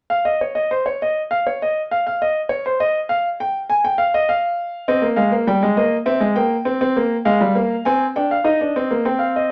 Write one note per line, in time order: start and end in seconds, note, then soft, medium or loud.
0.10 0.25 F5 medium
0.25 0.41 D#5 medium
0.41 0.56 C#5 medium
0.55 0.71 D#5 medium
0.71 0.86 C5 medium
0.86 1.01 C#5 medium
1.02 1.20 D#5 medium
1.31 1.46 F5 medium
1.47 1.61 C#5 medium
1.62 1.80 D#5 medium
1.91 2.05 F5 medium
2.07 2.20 F5 medium
2.22 2.40 D#5 medium
2.49 2.64 C#5 medium
2.66 2.80 C5 medium
2.80 2.99 D#5 medium
3.09 3.28 F5 medium
3.40 3.58 G5 medium
3.70 3.84 G#5 medium
3.85 3.98 G5 medium
3.98 4.13 F5 medium
4.14 4.28 D#5 medium
4.29 4.86 F5 medium
4.88 5.02 C4 medium
4.88 5.06 D#5 medium
5.02 5.16 A#3 medium
5.16 5.31 G#3 medium
5.16 5.35 F5 medium
5.32 5.46 A#3 medium
5.47 5.61 G3 medium
5.47 5.66 G5 medium
5.63 5.76 G#3 medium
5.77 5.95 A#3 medium
5.77 5.95 D#5 medium
6.06 6.20 C4 medium
6.06 6.24 E5 medium
6.20 6.35 G#3 medium
6.36 6.54 A#3 medium
6.36 7.23 G5 medium
6.65 6.79 C4 medium
6.81 6.95 C4 medium
6.96 7.15 A#3 medium
7.25 7.40 G#3 medium
7.25 7.83 F5 medium
7.41 7.55 G3 medium
7.55 7.74 A#3 medium
7.85 8.04 C4 medium
7.85 8.04 G#5 medium
8.16 8.34 D4 medium
8.16 8.30 G5 medium
8.31 8.45 F5 medium
8.44 8.59 D#4 medium
8.44 9.03 D#5 medium
8.61 8.75 D4 medium
8.76 8.90 C4 medium
8.91 9.05 A#3 medium
9.05 9.52 C4 medium
9.05 9.20 G5 medium
9.19 9.34 F5 medium
9.36 9.50 D#5 medium